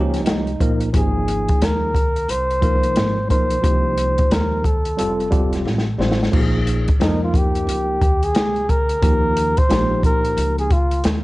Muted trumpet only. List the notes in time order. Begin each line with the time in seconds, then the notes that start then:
0.97 G#4
1.64 A#4
2.30 C5
3.30 C5
4.33 A#4
4.66 A4
7.02 D#4
7.24 F4
7.36 G4
8.24 G#4
8.70 A#4
9.58 C5
10.05 A#4
10.59 G#4
10.72 F4